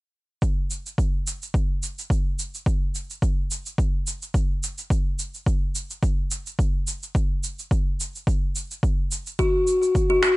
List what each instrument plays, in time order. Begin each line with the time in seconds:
0.42 kick, shaker
0.71 shaker
0.86 shaker
0.98 kick, shaker
1.27 shaker
1.42 shaker
1.54 kick, shaker
1.83 shaker
1.99 shaker
2.10 kick, shaker
2.39 shaker
2.55 shaker
2.66 kick, shaker
2.95 shaker
3.10 shaker
3.22 kick, shaker
3.51 shaker
3.66 shaker
3.78 kick, shaker
4.07 shaker
4.22 shaker
4.34 kick, shaker
4.63 shaker
4.78 shaker
4.90 kick, shaker
5.19 shaker
5.34 shaker
5.46 kick, shaker
5.75 shaker
5.90 shaker
6.03 kick, shaker
6.31 shaker
6.47 shaker
6.59 kick, shaker
6.87 shaker
7.03 shaker
7.15 kick, shaker
7.43 shaker
7.59 shaker
7.71 kick, shaker
8.00 shaker
8.15 shaker
8.27 kick, shaker
8.56 shaker
8.71 shaker
8.83 kick, shaker
9.11 shaker
9.27 shaker
9.39 kalimba F#4, kick, shaker
9.67 shaker
9.83 shaker
9.95 kick, shaker
10.10 kalimba F#4
10.23 kalimba F#4, finger snap, shaker